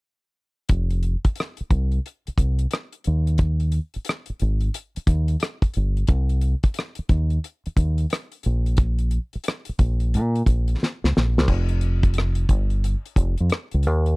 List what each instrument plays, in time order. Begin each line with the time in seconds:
0.69 fingered electric bass F1, kick, closed hi-hat
0.90 closed hi-hat
1.03 closed hi-hat
1.25 muted fingered electric bass stroke, kick, closed hi-hat
1.36 closed hi-hat
1.40 cross-stick
1.57 muted fingered electric bass stroke, closed hi-hat
1.71 fingered electric bass C2, kick, closed hi-hat
1.92 closed hi-hat
2.06 closed hi-hat
2.27 muted fingered electric bass stroke, closed hi-hat
2.38 fingered electric bass C2, kick, closed hi-hat
2.59 closed hi-hat
2.71 cross-stick, closed hi-hat
2.93 closed hi-hat
3.04 fingered electric bass D#2, closed hi-hat
3.27 closed hi-hat
3.38 kick, closed hi-hat
3.60 closed hi-hat
3.72 closed hi-hat
3.94 muted fingered electric bass stroke, closed hi-hat
4.05 closed hi-hat
4.09 cross-stick
4.26 muted fingered electric bass stroke, closed hi-hat
4.40 fingered electric bass G#1, closed hi-hat
4.61 closed hi-hat
4.74 closed hi-hat
4.96 muted fingered electric bass stroke, closed hi-hat
5.07 fingered electric bass D#2, kick, closed hi-hat
5.28 closed hi-hat
5.40 cross-stick, closed hi-hat
5.62 kick, closed hi-hat
5.74 fingered electric bass G1, closed hi-hat
5.97 closed hi-hat
6.07 fingered electric bass C2, kick, closed hi-hat
6.29 closed hi-hat
6.41 closed hi-hat
6.63 muted fingered electric bass stroke, kick, closed hi-hat
6.74 closed hi-hat
6.79 cross-stick
6.95 muted fingered electric bass stroke, closed hi-hat
7.09 fingered electric bass D#2, kick, closed hi-hat
7.30 closed hi-hat
7.44 closed hi-hat
7.66 muted fingered electric bass stroke, closed hi-hat
7.77 fingered electric bass D#2, kick, closed hi-hat
7.98 closed hi-hat
8.10 cross-stick, closed hi-hat
8.32 closed hi-hat
8.43 fingered electric bass A#1, closed hi-hat
8.66 closed hi-hat
8.77 kick, closed hi-hat
8.99 closed hi-hat
9.11 closed hi-hat
9.33 muted fingered electric bass stroke, closed hi-hat
9.44 closed hi-hat
9.48 cross-stick
9.65 closed hi-hat
9.69 muted fingered electric bass stroke
9.79 fingered electric bass A#1, kick, closed hi-hat
10.00 closed hi-hat
10.14 fingered electric bass A#2, closed hi-hat
10.36 closed hi-hat
10.46 fingered electric bass A#1, kick, closed hi-hat
10.68 closed hi-hat
10.83 snare
11.04 fingered electric bass C#2, snare
11.17 fingered electric bass A#1, snare
11.38 fingered electric bass C2, snare
11.48 fingered electric bass F1, kick, crash
11.69 closed hi-hat
11.81 closed hi-hat
12.03 kick, closed hi-hat
12.14 closed hi-hat
12.18 cross-stick
12.35 closed hi-hat
12.49 fingered electric bass G1, kick, closed hi-hat
12.70 closed hi-hat
12.84 closed hi-hat
13.05 closed hi-hat
13.16 fingered electric bass F1, kick, closed hi-hat
13.38 fingered electric bass F2, closed hi-hat
13.50 cross-stick, closed hi-hat
13.71 fingered electric bass C#2, closed hi-hat
13.83 fingered electric bass D#2, closed hi-hat
14.06 closed hi-hat